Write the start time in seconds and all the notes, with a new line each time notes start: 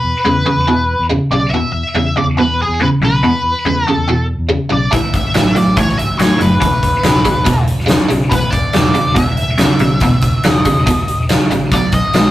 Already playing: E2 B2 B4
0.04 E2
0.25 E2 C#3
0.46 E2 C#3
0.57 E2
0.68 E2 B2
0.99 E2
1.10 E2 C#3
1.30 B1 E2 C#3 D5
1.50 E2 B2 E5
1.72 E2 E5
1.94 E2 C#3
2.16 E2 C#3 D5
2.25 E2
2.37 E2 B2 B4
2.62 G#4
2.68 E2
2.80 E2 C#3 B4
3.00 B1 E2 C#3
3.05 B4
3.22 E2 B2
3.43 E2
3.65 E2 C#3
3.87 E2 C#3 A4
3.97 E2
4.08 E2 B2
4.38 E2
4.49 E2 C#3
4.70 B1 E2 C#3 D5
4.92 A1 A2 E3 E5, kick, closed hi-hat
5.14 A1 E5, kick, closed hi-hat
5.34 A1 A2 F#3, snare, closed hi-hat
5.55 A2 F#3 D5, closed hi-hat
5.65 A1
5.77 A2 E3 C#5, kick, closed hi-hat
5.89 snare
5.98 E5, closed hi-hat
6.08 A1
6.19 A2 F#3 C#5, snare, closed hi-hat
6.38 F#1 A2 F#3 B4, closed hi-hat
6.60 E1 E2 B2, kick, closed hi-hat
6.83 E1, kick, closed hi-hat
7.03 E1 E2 C#3, snare, closed hi-hat
7.25 E2 C#3, kick, closed hi-hat
7.35 E1
7.45 E2 B2, kick, closed hi-hat
7.68 closed hi-hat
7.79 E1, snare
7.87 E2 C#3, snare, closed hi-hat
8.09 B1 E2 C#3, closed hi-hat
8.30 E1 E2 B2 B4, kick, closed hi-hat
8.51 E1 D5, kick, closed hi-hat
8.73 E1 E2 C#3, snare, closed hi-hat
8.94 E2 C#3, closed hi-hat
9.07 E1
9.15 E2 B2 E5, kick, closed hi-hat
9.37 closed hi-hat
9.48 E1
9.58 E2 C#3, snare, closed hi-hat
9.79 B1 E2 C#3, closed hi-hat
10.00 E1 E2 B2, kick, closed hi-hat
10.22 E1, kick, closed hi-hat
10.44 E1 E2 C#3, snare, closed hi-hat
10.48 D#5
10.65 E2 C#3, kick, closed hi-hat
10.76 E1
10.86 E2 B2, kick, closed hi-hat
11.08 closed hi-hat
11.18 E1
11.29 E2 C#3, snare, closed hi-hat
11.49 A1 E2 C#3, closed hi-hat
11.72 B1 B2 F#3 D5, kick, closed hi-hat
11.92 B1 D#5, kick, closed hi-hat
12.13 B1 B2 G#3, snare, closed hi-hat